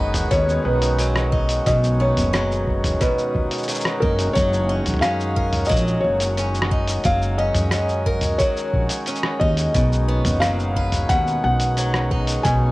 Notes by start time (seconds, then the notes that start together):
Already playing: F#1 B2 D#3 F#3 G#3 B3 F#4 B4 D#5
0.14 mid tom, open hi-hat, shaker
0.31 D#2 B2 C#4 C#5, kick, open hi-hat, shaker
0.49 shaker
0.65 B1 B4
0.82 open hi-hat, shaker
0.99 F#3, open hi-hat, shaker
1.16 cross-stick, shaker
1.32 D#4, kick
1.49 open hi-hat, shaker
1.66 B1 B2 D#5, kick, open hi-hat, shaker
1.84 shaker
2.00 B3 C#5
2.17 F#1, mid tom, open hi-hat, shaker
2.33 F#3, cross-stick, open hi-hat, shaker
2.52 shaker
2.67 kick
2.84 mid tom, open hi-hat, shaker
3.01 B2 B4, kick, open hi-hat, shaker
3.18 shaker
3.35 D#2, kick
3.51 open hi-hat, shaker
3.58 shaker
3.63 shaker
3.68 F#3, open hi-hat, shaker
3.75 shaker
3.80 shaker
3.85 cross-stick
4.00 F#1 D#4 A#4, kick
4.19 open hi-hat, shaker
4.33 F#1 F#3 C#5, kick, open hi-hat, shaker
4.53 shaker
4.69 C#4
4.86 F#2, mid tom, open hi-hat, shaker
4.88 mid tom
4.91 mid tom
4.94 mid tom
4.97 mid tom
4.99 C#4 F5, cross-stick, mid tom, open hi-hat, shaker
5.20 shaker
5.36 A#4, kick
5.53 mid tom, open hi-hat, shaker
5.65 D#5, shaker
5.69 A#1 F#3, kick, open hi-hat, shaker
5.76 shaker
5.87 shaker
6.01 F#1 C#5
6.20 open hi-hat, shaker
6.37 C#4, open hi-hat, shaker
6.55 shaker
6.62 cross-stick
6.71 D#4, kick
6.87 open hi-hat, shaker
7.04 F#1 F#3 F5, kick, open hi-hat, shaker
7.22 shaker
7.38 C#4 D#5
7.54 F#2, mid tom, open hi-hat, shaker
7.71 C#4, cross-stick, open hi-hat, shaker
7.89 shaker
8.06 A#4, kick
8.21 mid tom, open hi-hat, shaker
8.38 F#3 C#5, kick, open hi-hat, shaker
8.57 shaker
8.74 A#1, kick
8.89 open hi-hat, shaker
9.06 C#4, open hi-hat, shaker
9.16 shaker
9.23 cross-stick
9.40 D#2 D#4 D#5, kick
9.57 open hi-hat, shaker
9.74 B1 B2, kick, open hi-hat, shaker
9.92 shaker
10.08 B3
10.25 F#1, mid tom, open hi-hat, shaker
10.40 F#3 F5, cross-stick, open hi-hat, shaker
10.59 shaker
10.76 B4, kick
10.92 mid tom, open hi-hat, shaker
11.09 D#2 B2 F#5, kick, open hi-hat, shaker
11.27 shaker
11.44 B1 F#5
11.60 open hi-hat, shaker
11.77 F#3, open hi-hat, shaker
11.94 cross-stick, shaker
12.11 D#4, kick
12.27 open hi-hat, shaker
12.43 B1 B2 G#5, kick, open hi-hat, shaker